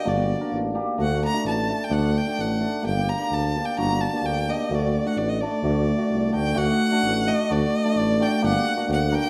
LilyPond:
<<
  \new Staff \with { instrumentName = "Violin" } { \time 2/4 \tempo 4 = 129 d''4 r4 | fis''8 bes''8 a''8. g''16 | fis''8 g''8 fis''4 | g''8 bes''8 a''8. g''16 |
bes''8 a''8 g''8 ees''8 | d''8. fis''16 d''16 ees''16 d''8~ | d''4. g''8 | fis''4. ees''8 |
d''4. g''8 | fis''4 fis''8 g''8 | }
  \new Staff \with { instrumentName = "Hammered dulcimer" } { \time 2/4 <bes d' fis'>8 r16 <bes d' bes'>16 r8 <bes d' g'>16 r16 | <a d' fis'>8 r16 <a d' fis'>16 r8 <a d' a'>16 r16 | <a d' a'>8 r16 <a d' a'>16 r8 <a d' a'>16 r16 | <bes d' g'>8 r16 <bes d' g'>16 r8 <bes d' g'>16 r16 |
<bes d' fis'>8 r16 <bes d' g'>16 r8 <bes d' g'>16 r16 | <a d' fis'>8 r16 <a d' fis'>16 r8 <a d' a'>16 r16 | <a d' fis'>8 r16 <a d' fis'>16 r8 <a d' fis'>16 r16 | <a d' fis'>8 r16 <a d' fis'>16 r8 <a d' fis'>16 r16 |
<a d' fis'>8 r16 <a d' a'>16 r8 <a d' fis'>16 r16 | <bes d' g'>8 r16 <bes d' fis'>16 r8 <bes d' bes'>16 r16 | }
  \new Staff \with { instrumentName = "Tuba" } { \clef bass \time 2/4 g,,4 a,,4 | d,4 a,,4 | d,4 a,,4 | g,,4 d,4 |
g,,4 d,4 | d,4 a,,4 | d,4 c,8 d,8 | d,8 r8 a,,4 |
d,8 r8 a,,4 | g,,8 r8 d,4 | }
>>